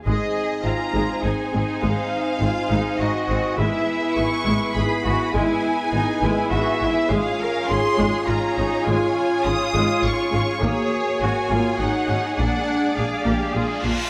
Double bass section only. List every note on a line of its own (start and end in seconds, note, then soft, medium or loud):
0.07 0.15 G#1 medium
0.65 0.73 G#1 soft
0.94 1.02 G#1 medium
1.24 1.32 G#1 soft
1.54 1.62 G#1 soft
1.83 1.91 G#1 medium
2.41 2.49 G#1 soft
2.70 2.78 G#1 medium
3.00 3.08 G#1 soft
3.29 3.37 G#1 soft
3.58 3.66 G#1 medium
4.17 4.25 G#1 soft
4.46 4.54 G#1 medium
4.76 4.84 G#1 soft
5.05 5.13 G#1 soft
5.35 5.43 G#1 medium
5.93 6.01 G#1 soft
6.23 6.31 G#1 medium
6.51 6.59 G#1 soft
6.82 6.90 G#1 soft
7.11 7.19 G#1 medium
7.70 7.78 G#1 soft
7.99 8.07 G#1 medium
8.28 8.36 G#1 soft
8.58 8.66 G#1 soft
8.87 8.95 G#1 medium
9.45 9.53 G#1 soft
9.75 9.83 G#1 medium
10.04 10.12 G#1 soft
10.32 10.40 G#1 soft
10.62 10.70 G#1 medium
11.20 11.28 G#1 soft
11.50 11.58 G#1 medium
11.79 11.87 G#1 soft
12.08 12.16 G#1 soft
12.39 12.47 A#1 medium
12.98 13.06 A#1 soft
13.26 13.34 A#1 soft
13.54 13.62 A#1 soft
13.84 13.92 A#1 soft